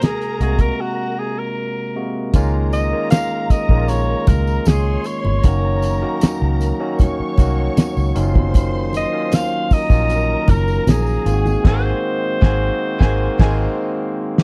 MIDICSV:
0, 0, Header, 1, 7, 480
1, 0, Start_track
1, 0, Key_signature, -5, "major"
1, 0, Tempo, 776197
1, 1447, Time_signature, 4, 2, 24, 8
1, 8924, End_track
2, 0, Start_track
2, 0, Title_t, "String section"
2, 0, Program_c, 0, 48
2, 0, Note_on_c, 0, 70, 90
2, 0, Note_on_c, 0, 82, 102
2, 1181, Note_off_c, 0, 70, 0
2, 1181, Note_off_c, 0, 82, 0
2, 1441, Note_on_c, 0, 82, 93
2, 1443, Note_on_c, 0, 70, 78
2, 2858, Note_off_c, 0, 82, 0
2, 2859, Note_off_c, 0, 70, 0
2, 2889, Note_on_c, 0, 73, 80
2, 2892, Note_on_c, 0, 84, 89
2, 3358, Note_off_c, 0, 73, 0
2, 3359, Note_off_c, 0, 84, 0
2, 3367, Note_on_c, 0, 82, 95
2, 3368, Note_on_c, 0, 70, 82
2, 4307, Note_off_c, 0, 70, 0
2, 4307, Note_off_c, 0, 82, 0
2, 4321, Note_on_c, 0, 73, 81
2, 4323, Note_on_c, 0, 85, 88
2, 5029, Note_off_c, 0, 73, 0
2, 5029, Note_off_c, 0, 85, 0
2, 5045, Note_on_c, 0, 72, 87
2, 5045, Note_on_c, 0, 84, 99
2, 5986, Note_off_c, 0, 72, 0
2, 5986, Note_off_c, 0, 84, 0
2, 5996, Note_on_c, 0, 82, 95
2, 6000, Note_on_c, 0, 70, 88
2, 6942, Note_off_c, 0, 82, 0
2, 6944, Note_off_c, 0, 70, 0
2, 6959, Note_on_c, 0, 68, 85
2, 6961, Note_on_c, 0, 80, 87
2, 7193, Note_off_c, 0, 68, 0
2, 7193, Note_off_c, 0, 80, 0
2, 7200, Note_on_c, 0, 80, 100
2, 7201, Note_on_c, 0, 68, 103
2, 7366, Note_off_c, 0, 68, 0
2, 7366, Note_off_c, 0, 80, 0
2, 7678, Note_on_c, 0, 80, 104
2, 7682, Note_on_c, 0, 68, 102
2, 7844, Note_off_c, 0, 80, 0
2, 7847, Note_off_c, 0, 68, 0
2, 8039, Note_on_c, 0, 68, 106
2, 8041, Note_on_c, 0, 80, 110
2, 8205, Note_off_c, 0, 68, 0
2, 8207, Note_off_c, 0, 80, 0
2, 8282, Note_on_c, 0, 80, 100
2, 8284, Note_on_c, 0, 68, 101
2, 8447, Note_off_c, 0, 80, 0
2, 8448, Note_off_c, 0, 68, 0
2, 8924, End_track
3, 0, Start_track
3, 0, Title_t, "Alto saxophone"
3, 0, Program_c, 1, 65
3, 24, Note_on_c, 1, 68, 84
3, 240, Note_off_c, 1, 68, 0
3, 264, Note_on_c, 1, 68, 83
3, 374, Note_on_c, 1, 70, 85
3, 383, Note_off_c, 1, 68, 0
3, 497, Note_on_c, 1, 66, 89
3, 506, Note_off_c, 1, 70, 0
3, 733, Note_on_c, 1, 68, 88
3, 743, Note_off_c, 1, 66, 0
3, 855, Note_on_c, 1, 70, 81
3, 864, Note_off_c, 1, 68, 0
3, 1451, Note_off_c, 1, 70, 0
3, 1689, Note_on_c, 1, 75, 108
3, 1911, Note_off_c, 1, 75, 0
3, 1921, Note_on_c, 1, 77, 109
3, 2167, Note_on_c, 1, 75, 102
3, 2177, Note_off_c, 1, 77, 0
3, 2404, Note_on_c, 1, 73, 98
3, 2413, Note_off_c, 1, 75, 0
3, 2646, Note_on_c, 1, 70, 92
3, 2655, Note_off_c, 1, 73, 0
3, 2890, Note_on_c, 1, 68, 95
3, 2899, Note_off_c, 1, 70, 0
3, 3129, Note_on_c, 1, 73, 97
3, 3138, Note_off_c, 1, 68, 0
3, 4087, Note_off_c, 1, 73, 0
3, 5545, Note_on_c, 1, 75, 116
3, 5779, Note_on_c, 1, 77, 110
3, 5788, Note_off_c, 1, 75, 0
3, 6016, Note_on_c, 1, 75, 120
3, 6026, Note_off_c, 1, 77, 0
3, 6493, Note_on_c, 1, 70, 99
3, 6502, Note_off_c, 1, 75, 0
3, 6729, Note_off_c, 1, 70, 0
3, 6740, Note_on_c, 1, 68, 95
3, 7216, Note_on_c, 1, 72, 102
3, 7226, Note_off_c, 1, 68, 0
3, 8892, Note_off_c, 1, 72, 0
3, 8924, End_track
4, 0, Start_track
4, 0, Title_t, "Tine electric piano"
4, 0, Program_c, 2, 4
4, 0, Control_c, 2, 64, 127
4, 0, Note_on_c, 2, 48, 77
4, 0, Note_on_c, 2, 56, 72
4, 0, Note_on_c, 2, 58, 69
4, 0, Note_on_c, 2, 66, 78
4, 248, Note_off_c, 2, 48, 0
4, 248, Note_on_c, 2, 48, 78
4, 251, Note_off_c, 2, 56, 0
4, 251, Note_on_c, 2, 56, 70
4, 252, Note_off_c, 2, 58, 0
4, 252, Note_on_c, 2, 58, 72
4, 256, Note_off_c, 2, 66, 0
4, 256, Note_on_c, 2, 66, 88
4, 888, Note_off_c, 2, 48, 0
4, 889, Note_off_c, 2, 56, 0
4, 890, Note_off_c, 2, 58, 0
4, 892, Note_off_c, 2, 66, 0
4, 1208, Note_on_c, 2, 48, 75
4, 1210, Note_on_c, 2, 56, 68
4, 1213, Note_on_c, 2, 58, 68
4, 1215, Note_on_c, 2, 66, 79
4, 1368, Note_off_c, 2, 48, 0
4, 1369, Note_off_c, 2, 56, 0
4, 1370, Note_off_c, 2, 58, 0
4, 1371, Note_off_c, 2, 66, 0
4, 1450, Note_on_c, 2, 51, 108
4, 1453, Note_on_c, 2, 56, 104
4, 1454, Note_on_c, 2, 58, 106
4, 1454, Note_on_c, 2, 61, 107
4, 1456, Control_c, 2, 64, 0
4, 1456, Note_on_c, 2, 65, 127
4, 1559, Control_c, 2, 64, 127
4, 1689, Note_off_c, 2, 51, 0
4, 1690, Note_off_c, 2, 56, 0
4, 1691, Note_off_c, 2, 58, 0
4, 1691, Note_off_c, 2, 61, 0
4, 1692, Note_off_c, 2, 65, 0
4, 1808, Note_on_c, 2, 51, 70
4, 1809, Note_on_c, 2, 56, 64
4, 1811, Note_on_c, 2, 58, 72
4, 1811, Note_on_c, 2, 61, 65
4, 1813, Note_on_c, 2, 65, 82
4, 2127, Note_off_c, 2, 51, 0
4, 2128, Note_off_c, 2, 56, 0
4, 2129, Note_off_c, 2, 58, 0
4, 2129, Note_off_c, 2, 61, 0
4, 2130, Note_off_c, 2, 65, 0
4, 2287, Note_on_c, 2, 51, 82
4, 2290, Note_on_c, 2, 56, 73
4, 2290, Note_on_c, 2, 58, 72
4, 2293, Note_on_c, 2, 61, 72
4, 2294, Note_on_c, 2, 63, 69
4, 2330, Note_off_c, 2, 63, 0
4, 2335, Note_on_c, 2, 65, 86
4, 2927, Note_off_c, 2, 51, 0
4, 2928, Note_off_c, 2, 56, 0
4, 2928, Note_off_c, 2, 58, 0
4, 2930, Note_off_c, 2, 61, 0
4, 2951, Note_off_c, 2, 65, 0
4, 3367, Note_on_c, 2, 51, 101
4, 3368, Note_on_c, 2, 54, 90
4, 3369, Note_on_c, 2, 58, 88
4, 3370, Note_on_c, 2, 61, 90
4, 3373, Note_on_c, 2, 66, 110
4, 3374, Control_c, 2, 64, 0
4, 3475, Control_c, 2, 64, 127
4, 3606, Note_off_c, 2, 51, 0
4, 3607, Note_off_c, 2, 54, 0
4, 3608, Note_off_c, 2, 58, 0
4, 3608, Note_off_c, 2, 61, 0
4, 3609, Note_off_c, 2, 66, 0
4, 3722, Note_on_c, 2, 51, 90
4, 3724, Note_on_c, 2, 54, 82
4, 3724, Note_on_c, 2, 58, 83
4, 3726, Note_on_c, 2, 61, 82
4, 3728, Note_on_c, 2, 66, 97
4, 4044, Note_off_c, 2, 51, 0
4, 4045, Note_off_c, 2, 54, 0
4, 4045, Note_off_c, 2, 58, 0
4, 4046, Note_off_c, 2, 61, 0
4, 4047, Note_off_c, 2, 66, 0
4, 4203, Note_on_c, 2, 54, 91
4, 4204, Note_on_c, 2, 51, 95
4, 4207, Note_on_c, 2, 58, 84
4, 4207, Note_on_c, 2, 61, 83
4, 4212, Note_on_c, 2, 66, 108
4, 4444, Note_off_c, 2, 54, 0
4, 4445, Note_off_c, 2, 51, 0
4, 4446, Note_off_c, 2, 58, 0
4, 4446, Note_off_c, 2, 61, 0
4, 4449, Note_off_c, 2, 66, 0
4, 4566, Note_on_c, 2, 51, 79
4, 4566, Note_on_c, 2, 54, 81
4, 4567, Note_on_c, 2, 58, 76
4, 4570, Note_on_c, 2, 61, 77
4, 4574, Note_on_c, 2, 66, 96
4, 5034, Note_off_c, 2, 51, 0
4, 5035, Note_off_c, 2, 54, 0
4, 5037, Note_off_c, 2, 58, 0
4, 5039, Note_off_c, 2, 61, 0
4, 5042, Note_on_c, 2, 51, 100
4, 5042, Note_on_c, 2, 54, 88
4, 5045, Note_on_c, 2, 58, 85
4, 5047, Note_on_c, 2, 61, 91
4, 5049, Note_off_c, 2, 66, 0
4, 5049, Note_on_c, 2, 63, 82
4, 5052, Control_c, 2, 64, 0
4, 5087, Note_off_c, 2, 63, 0
4, 5088, Note_on_c, 2, 65, 105
4, 5166, Control_c, 2, 64, 127
4, 5523, Note_off_c, 2, 51, 0
4, 5524, Note_off_c, 2, 54, 0
4, 5525, Note_off_c, 2, 58, 0
4, 5526, Note_off_c, 2, 61, 0
4, 5547, Note_off_c, 2, 65, 0
4, 5643, Note_on_c, 2, 51, 80
4, 5645, Note_on_c, 2, 54, 73
4, 5648, Note_on_c, 2, 58, 76
4, 5648, Note_on_c, 2, 61, 75
4, 5651, Note_on_c, 2, 65, 86
4, 5964, Note_off_c, 2, 51, 0
4, 5966, Note_off_c, 2, 54, 0
4, 5967, Note_off_c, 2, 58, 0
4, 5967, Note_off_c, 2, 61, 0
4, 5968, Note_off_c, 2, 65, 0
4, 6119, Note_on_c, 2, 51, 84
4, 6121, Note_on_c, 2, 54, 73
4, 6123, Note_on_c, 2, 58, 73
4, 6124, Note_on_c, 2, 61, 74
4, 6124, Note_on_c, 2, 65, 89
4, 6763, Note_off_c, 2, 51, 0
4, 6764, Note_off_c, 2, 54, 0
4, 6765, Note_off_c, 2, 58, 0
4, 6765, Note_off_c, 2, 65, 0
4, 6766, Note_off_c, 2, 61, 0
4, 6960, Note_on_c, 2, 51, 82
4, 6963, Note_on_c, 2, 56, 75
4, 6963, Note_on_c, 2, 58, 71
4, 6966, Note_on_c, 2, 60, 75
4, 6968, Note_on_c, 2, 65, 75
4, 6973, Control_c, 2, 64, 0
4, 7007, Note_off_c, 2, 65, 0
4, 7008, Note_on_c, 2, 66, 90
4, 7073, Control_c, 2, 64, 127
4, 7190, Note_off_c, 2, 51, 0
4, 7191, Note_off_c, 2, 56, 0
4, 7194, Note_off_c, 2, 58, 0
4, 7196, Note_off_c, 2, 60, 0
4, 7197, Note_on_c, 2, 51, 100
4, 7199, Note_on_c, 2, 56, 110
4, 7202, Note_on_c, 2, 58, 106
4, 7204, Note_on_c, 2, 60, 112
4, 7227, Note_off_c, 2, 66, 0
4, 7245, Note_on_c, 2, 66, 107
4, 7364, Note_off_c, 2, 51, 0
4, 7365, Note_off_c, 2, 56, 0
4, 7367, Note_off_c, 2, 58, 0
4, 7368, Note_off_c, 2, 60, 0
4, 7391, Note_off_c, 2, 66, 0
4, 7679, Note_on_c, 2, 51, 106
4, 7681, Note_on_c, 2, 56, 103
4, 7682, Note_on_c, 2, 60, 104
4, 7683, Note_on_c, 2, 58, 110
4, 7685, Note_on_c, 2, 66, 109
4, 7845, Note_off_c, 2, 51, 0
4, 7846, Note_off_c, 2, 56, 0
4, 7847, Note_off_c, 2, 60, 0
4, 7848, Note_off_c, 2, 58, 0
4, 7849, Note_off_c, 2, 66, 0
4, 8041, Note_on_c, 2, 51, 108
4, 8044, Note_on_c, 2, 56, 112
4, 8044, Note_on_c, 2, 58, 107
4, 8046, Note_on_c, 2, 60, 105
4, 8047, Note_on_c, 2, 66, 105
4, 8207, Note_off_c, 2, 51, 0
4, 8208, Note_off_c, 2, 56, 0
4, 8208, Note_off_c, 2, 58, 0
4, 8210, Note_off_c, 2, 60, 0
4, 8210, Note_off_c, 2, 66, 0
4, 8280, Note_on_c, 2, 51, 105
4, 8284, Note_on_c, 2, 56, 96
4, 8286, Note_on_c, 2, 58, 102
4, 8288, Note_on_c, 2, 60, 103
4, 8446, Note_off_c, 2, 51, 0
4, 8448, Note_off_c, 2, 56, 0
4, 8449, Note_off_c, 2, 58, 0
4, 8450, Note_off_c, 2, 60, 0
4, 8924, End_track
5, 0, Start_track
5, 0, Title_t, "Fingered electric bass"
5, 0, Program_c, 3, 33
5, 248, Note_on_c, 3, 36, 85
5, 429, Note_off_c, 3, 36, 0
5, 1445, Note_on_c, 3, 37, 104
5, 1807, Note_off_c, 3, 37, 0
5, 2285, Note_on_c, 3, 34, 89
5, 2557, Note_off_c, 3, 34, 0
5, 2646, Note_on_c, 3, 37, 91
5, 2827, Note_off_c, 3, 37, 0
5, 2886, Note_on_c, 3, 37, 91
5, 3067, Note_off_c, 3, 37, 0
5, 3249, Note_on_c, 3, 31, 93
5, 3338, Note_off_c, 3, 31, 0
5, 3369, Note_on_c, 3, 30, 111
5, 3729, Note_off_c, 3, 30, 0
5, 3968, Note_on_c, 3, 37, 105
5, 4148, Note_off_c, 3, 37, 0
5, 4567, Note_on_c, 3, 36, 92
5, 4747, Note_off_c, 3, 36, 0
5, 4928, Note_on_c, 3, 37, 91
5, 5017, Note_off_c, 3, 37, 0
5, 5050, Note_on_c, 3, 30, 103
5, 5591, Note_off_c, 3, 30, 0
5, 6122, Note_on_c, 3, 34, 90
5, 6395, Note_off_c, 3, 34, 0
5, 6483, Note_on_c, 3, 30, 100
5, 6665, Note_off_c, 3, 30, 0
5, 6722, Note_on_c, 3, 34, 99
5, 6904, Note_off_c, 3, 34, 0
5, 6961, Note_on_c, 3, 32, 99
5, 7144, Note_off_c, 3, 32, 0
5, 7206, Note_on_c, 3, 32, 108
5, 7369, Note_off_c, 3, 32, 0
5, 7683, Note_on_c, 3, 32, 110
5, 7848, Note_off_c, 3, 32, 0
5, 8045, Note_on_c, 3, 32, 99
5, 8209, Note_off_c, 3, 32, 0
5, 8283, Note_on_c, 3, 32, 100
5, 8448, Note_off_c, 3, 32, 0
5, 8924, End_track
6, 0, Start_track
6, 0, Title_t, "Muted fingered electric bass strokes"
6, 2165, Note_on_c, 9, 29, 51
6, 2226, Note_off_c, 9, 29, 0
6, 3853, Note_on_c, 9, 29, 50
6, 3914, Note_off_c, 9, 29, 0
6, 4451, Note_on_c, 9, 29, 48
6, 4513, Note_off_c, 9, 29, 0
6, 4806, Note_on_c, 9, 29, 48
6, 4868, Note_off_c, 9, 29, 0
6, 6005, Note_on_c, 9, 29, 52
6, 6067, Note_off_c, 9, 29, 0
6, 8924, End_track
7, 0, Start_track
7, 0, Title_t, "Drums"
7, 10, Note_on_c, 9, 42, 84
7, 17, Note_on_c, 9, 63, 59
7, 22, Note_on_c, 9, 38, 107
7, 72, Note_off_c, 9, 42, 0
7, 79, Note_off_c, 9, 63, 0
7, 84, Note_off_c, 9, 38, 0
7, 134, Note_on_c, 9, 42, 55
7, 195, Note_off_c, 9, 42, 0
7, 252, Note_on_c, 9, 42, 69
7, 314, Note_off_c, 9, 42, 0
7, 363, Note_on_c, 9, 36, 88
7, 363, Note_on_c, 9, 42, 56
7, 425, Note_off_c, 9, 36, 0
7, 425, Note_off_c, 9, 42, 0
7, 1444, Note_on_c, 9, 54, 49
7, 1445, Note_on_c, 9, 42, 92
7, 1446, Note_on_c, 9, 36, 109
7, 1446, Note_on_c, 9, 62, 47
7, 1506, Note_off_c, 9, 54, 0
7, 1507, Note_off_c, 9, 42, 0
7, 1508, Note_off_c, 9, 36, 0
7, 1508, Note_off_c, 9, 62, 0
7, 1686, Note_on_c, 9, 54, 52
7, 1690, Note_on_c, 9, 42, 74
7, 1747, Note_off_c, 9, 54, 0
7, 1752, Note_off_c, 9, 42, 0
7, 1919, Note_on_c, 9, 42, 88
7, 1927, Note_on_c, 9, 54, 98
7, 1931, Note_on_c, 9, 38, 111
7, 1932, Note_on_c, 9, 63, 64
7, 1981, Note_off_c, 9, 42, 0
7, 1989, Note_off_c, 9, 54, 0
7, 1993, Note_off_c, 9, 38, 0
7, 1994, Note_off_c, 9, 63, 0
7, 2165, Note_on_c, 9, 36, 88
7, 2167, Note_on_c, 9, 42, 73
7, 2167, Note_on_c, 9, 54, 54
7, 2227, Note_off_c, 9, 36, 0
7, 2228, Note_off_c, 9, 42, 0
7, 2229, Note_off_c, 9, 54, 0
7, 2282, Note_on_c, 9, 36, 97
7, 2344, Note_off_c, 9, 36, 0
7, 2400, Note_on_c, 9, 54, 48
7, 2406, Note_on_c, 9, 42, 77
7, 2418, Note_on_c, 9, 62, 44
7, 2462, Note_off_c, 9, 54, 0
7, 2468, Note_off_c, 9, 42, 0
7, 2479, Note_off_c, 9, 62, 0
7, 2641, Note_on_c, 9, 62, 58
7, 2641, Note_on_c, 9, 64, 78
7, 2645, Note_on_c, 9, 36, 99
7, 2646, Note_on_c, 9, 54, 51
7, 2653, Note_on_c, 9, 42, 66
7, 2703, Note_off_c, 9, 62, 0
7, 2703, Note_off_c, 9, 64, 0
7, 2707, Note_off_c, 9, 36, 0
7, 2707, Note_off_c, 9, 54, 0
7, 2715, Note_off_c, 9, 42, 0
7, 2766, Note_on_c, 9, 54, 34
7, 2828, Note_off_c, 9, 54, 0
7, 2878, Note_on_c, 9, 54, 85
7, 2886, Note_on_c, 9, 42, 95
7, 2886, Note_on_c, 9, 63, 81
7, 2893, Note_on_c, 9, 38, 103
7, 2940, Note_off_c, 9, 54, 0
7, 2948, Note_off_c, 9, 42, 0
7, 2948, Note_off_c, 9, 63, 0
7, 2955, Note_off_c, 9, 38, 0
7, 3118, Note_on_c, 9, 54, 54
7, 3128, Note_on_c, 9, 42, 77
7, 3180, Note_off_c, 9, 54, 0
7, 3190, Note_off_c, 9, 42, 0
7, 3244, Note_on_c, 9, 63, 68
7, 3306, Note_off_c, 9, 63, 0
7, 3361, Note_on_c, 9, 54, 46
7, 3361, Note_on_c, 9, 62, 48
7, 3365, Note_on_c, 9, 36, 112
7, 3365, Note_on_c, 9, 42, 92
7, 3423, Note_off_c, 9, 54, 0
7, 3423, Note_off_c, 9, 62, 0
7, 3427, Note_off_c, 9, 36, 0
7, 3427, Note_off_c, 9, 42, 0
7, 3601, Note_on_c, 9, 54, 53
7, 3607, Note_on_c, 9, 62, 34
7, 3610, Note_on_c, 9, 42, 78
7, 3663, Note_off_c, 9, 54, 0
7, 3669, Note_off_c, 9, 62, 0
7, 3671, Note_off_c, 9, 42, 0
7, 3843, Note_on_c, 9, 42, 87
7, 3843, Note_on_c, 9, 54, 101
7, 3855, Note_on_c, 9, 38, 110
7, 3858, Note_on_c, 9, 63, 68
7, 3905, Note_off_c, 9, 42, 0
7, 3905, Note_off_c, 9, 54, 0
7, 3917, Note_off_c, 9, 38, 0
7, 3920, Note_off_c, 9, 63, 0
7, 4085, Note_on_c, 9, 54, 51
7, 4092, Note_on_c, 9, 42, 75
7, 4147, Note_off_c, 9, 54, 0
7, 4154, Note_off_c, 9, 42, 0
7, 4320, Note_on_c, 9, 54, 46
7, 4327, Note_on_c, 9, 36, 99
7, 4328, Note_on_c, 9, 42, 74
7, 4337, Note_on_c, 9, 62, 48
7, 4337, Note_on_c, 9, 64, 66
7, 4382, Note_off_c, 9, 54, 0
7, 4389, Note_off_c, 9, 36, 0
7, 4390, Note_off_c, 9, 42, 0
7, 4399, Note_off_c, 9, 62, 0
7, 4399, Note_off_c, 9, 64, 0
7, 4561, Note_on_c, 9, 62, 53
7, 4565, Note_on_c, 9, 36, 103
7, 4568, Note_on_c, 9, 54, 53
7, 4571, Note_on_c, 9, 42, 66
7, 4623, Note_off_c, 9, 62, 0
7, 4626, Note_off_c, 9, 36, 0
7, 4630, Note_off_c, 9, 54, 0
7, 4633, Note_off_c, 9, 42, 0
7, 4806, Note_on_c, 9, 42, 94
7, 4807, Note_on_c, 9, 54, 83
7, 4809, Note_on_c, 9, 63, 81
7, 4813, Note_on_c, 9, 38, 102
7, 4868, Note_off_c, 9, 42, 0
7, 4869, Note_off_c, 9, 54, 0
7, 4871, Note_off_c, 9, 63, 0
7, 4875, Note_off_c, 9, 38, 0
7, 4929, Note_on_c, 9, 54, 31
7, 4990, Note_off_c, 9, 54, 0
7, 5045, Note_on_c, 9, 42, 83
7, 5045, Note_on_c, 9, 54, 53
7, 5106, Note_off_c, 9, 42, 0
7, 5107, Note_off_c, 9, 54, 0
7, 5166, Note_on_c, 9, 36, 98
7, 5168, Note_on_c, 9, 63, 68
7, 5228, Note_off_c, 9, 36, 0
7, 5230, Note_off_c, 9, 63, 0
7, 5281, Note_on_c, 9, 62, 51
7, 5287, Note_on_c, 9, 36, 112
7, 5287, Note_on_c, 9, 42, 97
7, 5289, Note_on_c, 9, 54, 50
7, 5343, Note_off_c, 9, 62, 0
7, 5348, Note_off_c, 9, 36, 0
7, 5349, Note_off_c, 9, 42, 0
7, 5351, Note_off_c, 9, 54, 0
7, 5523, Note_on_c, 9, 62, 34
7, 5528, Note_on_c, 9, 54, 53
7, 5531, Note_on_c, 9, 42, 84
7, 5584, Note_off_c, 9, 62, 0
7, 5590, Note_off_c, 9, 54, 0
7, 5592, Note_off_c, 9, 42, 0
7, 5762, Note_on_c, 9, 42, 88
7, 5766, Note_on_c, 9, 54, 99
7, 5768, Note_on_c, 9, 63, 63
7, 5773, Note_on_c, 9, 38, 108
7, 5823, Note_off_c, 9, 42, 0
7, 5828, Note_off_c, 9, 54, 0
7, 5830, Note_off_c, 9, 63, 0
7, 5835, Note_off_c, 9, 38, 0
7, 6002, Note_on_c, 9, 54, 51
7, 6005, Note_on_c, 9, 36, 85
7, 6013, Note_on_c, 9, 46, 56
7, 6064, Note_off_c, 9, 54, 0
7, 6067, Note_off_c, 9, 36, 0
7, 6075, Note_off_c, 9, 46, 0
7, 6121, Note_on_c, 9, 36, 93
7, 6123, Note_on_c, 9, 54, 34
7, 6183, Note_off_c, 9, 36, 0
7, 6185, Note_off_c, 9, 54, 0
7, 6242, Note_on_c, 9, 54, 49
7, 6247, Note_on_c, 9, 42, 76
7, 6254, Note_on_c, 9, 62, 47
7, 6304, Note_off_c, 9, 54, 0
7, 6309, Note_off_c, 9, 42, 0
7, 6316, Note_off_c, 9, 62, 0
7, 6479, Note_on_c, 9, 62, 57
7, 6479, Note_on_c, 9, 64, 73
7, 6482, Note_on_c, 9, 36, 95
7, 6486, Note_on_c, 9, 42, 71
7, 6488, Note_on_c, 9, 54, 49
7, 6541, Note_off_c, 9, 62, 0
7, 6541, Note_off_c, 9, 64, 0
7, 6544, Note_off_c, 9, 36, 0
7, 6548, Note_off_c, 9, 42, 0
7, 6549, Note_off_c, 9, 54, 0
7, 6603, Note_on_c, 9, 54, 35
7, 6665, Note_off_c, 9, 54, 0
7, 6723, Note_on_c, 9, 63, 80
7, 6724, Note_on_c, 9, 54, 84
7, 6727, Note_on_c, 9, 42, 93
7, 6734, Note_on_c, 9, 38, 102
7, 6785, Note_off_c, 9, 63, 0
7, 6786, Note_off_c, 9, 54, 0
7, 6789, Note_off_c, 9, 42, 0
7, 6796, Note_off_c, 9, 38, 0
7, 6843, Note_on_c, 9, 54, 30
7, 6904, Note_off_c, 9, 54, 0
7, 6963, Note_on_c, 9, 54, 56
7, 6965, Note_on_c, 9, 42, 80
7, 7025, Note_off_c, 9, 54, 0
7, 7027, Note_off_c, 9, 42, 0
7, 7085, Note_on_c, 9, 63, 66
7, 7091, Note_on_c, 9, 54, 34
7, 7146, Note_off_c, 9, 63, 0
7, 7152, Note_off_c, 9, 54, 0
7, 7203, Note_on_c, 9, 36, 115
7, 7203, Note_on_c, 9, 49, 85
7, 7212, Note_on_c, 9, 38, 111
7, 7264, Note_off_c, 9, 36, 0
7, 7265, Note_off_c, 9, 49, 0
7, 7273, Note_off_c, 9, 38, 0
7, 7682, Note_on_c, 9, 36, 120
7, 7688, Note_on_c, 9, 38, 115
7, 7744, Note_off_c, 9, 36, 0
7, 7749, Note_off_c, 9, 38, 0
7, 8043, Note_on_c, 9, 36, 109
7, 8050, Note_on_c, 9, 38, 108
7, 8105, Note_off_c, 9, 36, 0
7, 8112, Note_off_c, 9, 38, 0
7, 8281, Note_on_c, 9, 49, 88
7, 8283, Note_on_c, 9, 36, 112
7, 8289, Note_on_c, 9, 38, 107
7, 8343, Note_off_c, 9, 49, 0
7, 8344, Note_off_c, 9, 36, 0
7, 8351, Note_off_c, 9, 38, 0
7, 8894, Note_on_c, 9, 38, 95
7, 8924, Note_off_c, 9, 38, 0
7, 8924, End_track
0, 0, End_of_file